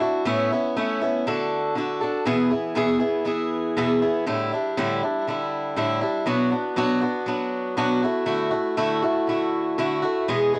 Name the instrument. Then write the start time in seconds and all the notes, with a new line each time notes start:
steel-string acoustic guitar
0.00 D4 E4 F#4
0.25 A2 A3 B3 C#4 E4
0.52 B3 C#4 E4
0.76 A3 B3 C#4 E4
1.01 B3 C#4 E4
1.27 D3 D4 F#4 A4
1.76 D3 D4 F#4 A4
2.01 D4 F#4 A4
2.25 E2 B2 E3 B3 E4 G#4
2.50 E3 B3 E4 G#4
2.75 E2 B2 E3 B3 E4 G#4
2.99 E3 B3 E4 G#4
3.25 E3 B3 E4 G#4
3.77 E2 B2 E3 B3 E4 G#4
4.01 E3 B3 E4 G#4
4.26 A2 D3 G3 D4 E4
4.53 G3 D4 E4
4.77 A2 D3 G3 D4 E4
5.03 G3 D4 E4
5.28 D3 G3 D4 E4
5.76 A2 D3 G3 D4 E4
6.01 G3 D4 E4
6.26 B2 F#3 B3 D4 F#4
6.50 B3 D4 F#4
6.76 B2 F#3 B3 D4 F#4
7.01 B3 D4 F#4
7.26 F#3 B3 D4 F#4
7.77 B2 F#3 B3 D4 F#4
8.02 A3 E4 F#4
8.26 D3 A3 E4 F#4
8.51 A3 E4 F#4
8.77 D3 A3 E4 F#4
9.02 A3 E4 F#4
9.27 D3 A3 E4 F#4
9.78 D3 A3 E4 F#4
10.02 A3 E4 F#4
10.28 E2 B2 E3 G#3 B3 G#4
10.54 E3 G#3 B3 G#4